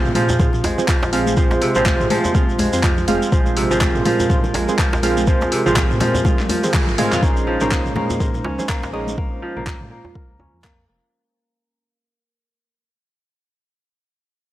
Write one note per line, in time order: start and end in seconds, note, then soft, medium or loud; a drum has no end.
0.00 1.61 C3 loud
0.00 0.14 F3 loud
0.00 7.19 G#3 medium
0.00 1.11 A#3 medium
0.00 0.13 C4 loud
0.00 0.13 F4 medium
0.00 7.19 F4 medium
0.00 0.13 G#4 medium
0.00 0.13 C5 loud
0.00 3.28 C5 medium
0.05 0.61 A#2 loud
0.05 mid tom medium
0.05 shekere soft
0.15 0.87 F3 loud
0.15 0.37 C4 medium
0.15 0.37 F4 medium
0.15 0.37 G#4 medium
0.15 0.37 C5 medium
0.15 open hi-hat medium
0.15 high conga medium
0.15 low conga medium
0.29 muted conga soft
0.29 djembe tone medium
0.29 shekere medium
0.39 0.49 C4 medium
0.39 0.49 F4 medium
0.39 1.91 F4 medium
0.39 0.49 G#4 medium
0.39 0.49 C5 loud
0.39 kick loud
0.39 mid tom medium
0.39 low conga loud
0.39 shekere medium
0.53 low conga medium
0.53 shekere soft
0.64 0.76 A#1 medium
0.64 2.58 G#3 medium
0.64 open hi-hat medium
0.64 djembe slap medium
0.64 djembe tone medium
0.78 0.85 C4 medium
0.78 0.85 F4 medium
0.78 0.85 G#4 medium
0.78 0.85 C5 medium
0.78 muted conga soft
0.78 low conga medium
0.78 shekere medium
0.88 1.12 F3 loud
0.88 kick loud
0.88 clap loud
0.88 shekere medium
1.03 1.59 A#1 medium
1.03 djembe slap loud
1.03 shekere soft
1.13 1.36 F3 medium
1.13 1.35 C4 medium
1.13 1.35 F4 medium
1.13 1.35 G#4 medium
1.13 1.35 F5 loud
1.13 open hi-hat medium
1.13 muted conga soft
1.27 high conga medium
1.27 shekere medium
1.37 1.67 F3 medium
1.37 1.72 C4 medium
1.37 1.73 F4 medium
1.37 1.72 G#4 medium
1.37 1.72 C5 loud
1.37 kick loud
1.37 shekere medium
1.51 djembe slap medium
1.51 muted conga medium
1.51 shekere soft
1.62 3.56 C3 loud
1.62 open hi-hat medium
1.75 2.02 A#1 medium
1.75 1.85 F3 loud
1.75 2.08 C4 loud
1.75 2.08 F4 medium
1.75 2.08 G#4 medium
1.75 2.08 C5 loud
1.75 mid tom medium
1.75 shekere medium
1.86 2.09 F3 loud
1.86 kick medium
1.86 clap loud
1.86 muted conga soft
1.86 djembe tone medium
1.86 high conga loud
1.86 shekere medium
2.00 2.45 A#2 loud
2.00 mid tom medium
2.00 shekere soft
2.10 2.82 F3 loud
2.10 2.32 C4 medium
2.10 2.32 F4 medium
2.10 2.32 G#4 medium
2.10 2.32 C5 medium
2.10 open hi-hat medium
2.10 high conga loud
2.10 low conga medium
2.24 muted conga soft
2.24 djembe tone medium
2.24 shekere medium
2.35 2.44 C4 medium
2.35 2.44 F4 medium
2.35 3.86 F4 medium
2.35 2.44 G#4 medium
2.35 2.44 C5 medium
2.35 kick loud
2.35 high conga loud
2.35 shekere medium
2.49 2.68 A#1 medium
2.49 shekere soft
2.59 4.53 G#3 medium
2.59 open hi-hat medium
2.59 high conga medium
2.59 djembe tone medium
2.73 3.05 F2 loud
2.73 2.80 C4 medium
2.73 2.80 F4 medium
2.73 2.80 G#4 medium
2.73 2.80 C5 medium
2.73 open hi-hat medium
2.73 muted conga soft
2.73 shekere medium
2.83 3.07 F3 loud
2.83 kick medium
2.83 clap loud
2.83 high conga medium
2.83 shekere medium
2.97 low conga medium
2.97 shekere soft
3.08 3.19 F1 medium
3.08 3.31 F3 medium
3.08 3.30 C4 loud
3.08 3.30 F4 medium
3.08 3.30 G#4 medium
3.08 3.30 F5 loud
3.08 open hi-hat medium
3.08 muted conga medium
3.08 high conga medium
3.22 shekere medium
3.32 3.66 A#1 loud
3.32 3.62 F3 medium
3.32 3.68 C4 loud
3.32 3.68 F4 medium
3.32 3.68 G#4 medium
3.32 7.19 A#4 loud
3.32 3.68 C5 loud
3.32 kick loud
3.32 shekere medium
3.46 muted conga medium
3.46 shekere soft
3.57 5.51 C3 loud
3.57 open hi-hat medium
3.71 3.97 A#1 medium
3.71 3.80 F3 loud
3.71 4.03 C4 loud
3.71 4.03 F4 medium
3.71 4.03 G#4 loud
3.71 4.03 C5 loud
3.71 mid tom medium
3.71 shekere medium
3.81 4.04 F3 loud
3.81 kick loud
3.81 clap loud
3.81 muted conga soft
3.81 high conga loud
3.81 djembe tone loud
3.81 shekere medium
3.95 4.51 A#2 loud
3.95 mid tom medium
3.95 shekere soft
4.05 4.77 F3 loud
4.05 4.27 C4 medium
4.05 4.27 F4 medium
4.05 4.27 G#4 medium
4.05 4.27 C5 medium
4.05 open hi-hat medium
4.05 high conga loud
4.05 low conga loud
4.20 muted conga medium
4.20 djembe tone medium
4.20 shekere medium
4.30 4.40 C4 medium
4.30 5.81 F4 medium
4.30 4.40 F4 medium
4.30 4.40 G#4 medium
4.30 4.40 C5 loud
4.30 kick loud
4.30 mid tom loud
4.30 low conga loud
4.30 shekere medium
4.44 low conga loud
4.44 shekere soft
4.54 4.66 A#1 medium
4.54 6.73 G#3 medium
4.54 open hi-hat medium
4.54 djembe slap medium
4.54 djembe tone medium
4.68 4.76 C4 medium
4.68 4.76 F4 medium
4.68 4.76 G#4 medium
4.68 4.76 C5 medium
4.68 muted conga soft
4.68 low conga medium
4.68 shekere medium
4.79 5.02 F3 loud
4.79 kick loud
4.79 clap loud
4.79 shekere medium
4.93 5.49 A#1 loud
4.93 djembe slap loud
4.93 shekere soft
5.03 5.26 F3 medium
5.03 5.25 C4 loud
5.03 5.25 F4 medium
5.03 5.25 G#4 medium
5.03 5.25 F5 loud
5.03 open hi-hat medium
5.03 muted conga medium
5.17 high conga medium
5.17 shekere medium
5.27 5.57 F3 medium
5.27 5.63 C4 loud
5.27 5.63 F4 medium
5.27 5.63 G#4 medium
5.27 5.63 C5 loud
5.27 kick loud
5.27 shekere medium
5.41 muted conga medium
5.41 djembe slap medium
5.41 shekere soft
5.52 7.28 C3 loud
5.52 open hi-hat medium
5.66 5.92 A#1 medium
5.66 5.75 F3 loud
5.66 5.98 C4 loud
5.66 5.98 F4 medium
5.66 5.98 G#4 medium
5.66 5.98 C5 loud
5.66 mid tom medium
5.66 shekere medium
5.76 6.00 F3 loud
5.76 kick loud
5.76 clap loud
5.76 muted conga soft
5.76 djembe tone loud
5.76 high conga loud
5.76 shekere medium
5.90 6.35 A#2 loud
5.90 mid tom medium
5.90 shekere soft
6.00 6.48 F3 loud
6.00 6.23 C4 medium
6.00 6.23 F4 medium
6.00 6.23 G#4 medium
6.00 6.23 C5 medium
6.00 open hi-hat medium
6.00 djembe slap medium
6.00 high conga medium
6.00 low conga loud
6.14 muted conga medium
6.14 djembe tone medium
6.14 shekere medium
6.25 6.35 C4 medium
6.25 6.35 F4 medium
6.25 7.12 F4 medium
6.25 6.35 G#4 medium
6.25 6.35 C5 loud
6.25 kick loud
6.25 high tom medium
6.25 high conga loud
6.25 shekere medium
6.39 clap soft
6.39 high tom medium
6.39 shekere soft
6.49 7.28 F3 medium
6.49 open hi-hat medium
6.49 high tom medium
6.49 high conga loud
6.49 djembe tone medium
6.63 6.71 C4 medium
6.63 6.71 F4 medium
6.63 6.71 G#4 medium
6.63 6.71 C5 medium
6.63 open hi-hat medium
6.63 mid tom medium
6.63 muted conga soft
6.63 shekere medium
6.74 6.97 G#3 medium
6.74 kick loud
6.74 clap loud
6.74 mid tom medium
6.74 high conga medium
6.74 shekere medium
6.88 6.96 G#1 medium
6.88 low conga medium
6.88 shekere soft
6.98 7.28 G#3 loud
6.98 7.20 C4 medium
6.98 7.20 F4 medium
6.98 7.20 G#4 medium
6.98 7.20 F5 loud
6.98 mid tom loud
6.98 open hi-hat loud
6.98 muted conga medium
6.98 high conga medium
7.12 7.21 F2 medium
7.12 8.64 F4 loud
7.12 clap medium
7.12 mid tom medium
7.12 shekere medium
7.23 7.57 A#1 loud
7.23 11.09 G#3 medium
7.23 7.61 A#3 medium
7.23 11.09 C#4 medium
7.23 7.58 C#4 medium
7.23 7.58 D#4 medium
7.23 9.16 D#4 medium
7.23 7.58 G#4 medium
7.23 11.09 C5 medium
7.23 7.58 C5 loud
7.23 kick loud
7.23 shekere medium
7.37 muted conga medium
7.37 shekere soft
7.47 9.41 F3 loud
7.61 7.87 A#1 medium
7.61 7.71 A#3 loud
7.61 7.93 C#4 loud
7.61 7.93 D#4 medium
7.61 7.93 G#4 medium
7.61 7.93 C5 loud
7.61 mid tom medium
7.61 shekere medium
7.71 7.96 A#3 loud
7.71 kick loud
7.71 clap loud
7.71 muted conga soft
7.71 high conga medium
7.71 djembe tone loud
7.71 shekere medium
7.85 8.42 A#2 loud
7.85 mid tom medium
7.85 shekere soft
7.96 8.69 A#3 loud
7.96 8.18 C#4 medium
7.96 8.18 D#4 medium
7.96 8.18 G#4 medium
7.96 8.18 C5 medium
7.96 djembe slap medium
7.96 high conga loud
7.96 low conga loud
8.10 muted conga soft
8.10 djembe tone medium
8.10 shekere medium
8.20 8.30 C#4 medium
8.20 8.30 D#4 medium
8.20 8.30 G#4 medium
8.20 9.48 A#4 medium
8.20 8.30 C5 medium
8.20 kick loud
8.20 mid tom medium
8.20 low conga loud
8.20 shekere medium
8.34 low conga loud
8.34 shekere soft
8.45 8.56 C#2 medium
8.45 10.19 C#4 medium
8.45 djembe slap medium
8.45 djembe tone medium
8.59 8.66 C#4 medium
8.59 8.66 D#4 medium
8.59 8.66 G#4 medium
8.59 8.66 C5 medium
8.59 muted conga soft
8.59 low conga loud
8.59 shekere medium
8.69 8.93 A#3 loud
8.69 kick loud
8.69 clap loud
8.69 shekere medium
8.83 9.39 A#1 medium
8.83 djembe slap loud
8.83 shekere soft
8.93 9.18 A#3 medium
8.93 9.15 C#4 medium
8.93 9.15 D#4 medium
8.93 9.15 G#4 medium
8.93 9.15 D#5 loud
8.93 muted conga medium
9.07 high conga medium
9.07 shekere medium
9.18 9.56 A#3 medium
9.18 11.11 F4 medium
9.18 kick loud
9.42 11.18 F3 loud
9.57 9.83 A#1 medium
9.57 9.66 A#3 loud
9.57 mid tom medium
9.66 kick loud
9.66 clap loud
9.66 djembe tone loud
9.81 10.25 A#2 medium
9.81 mid tom medium
9.91 10.64 A#3 loud
10.05 djembe tone medium
10.15 11.43 A#4 medium
10.15 kick loud
10.30 10.48 C#2 medium
10.40 12.14 C#4 medium
10.40 djembe tone medium
10.54 10.85 F2 medium
10.64 10.88 A#3 loud
10.64 kick loud
10.64 clap loud
10.88 11.00 F1 medium
10.88 12.81 A#3 medium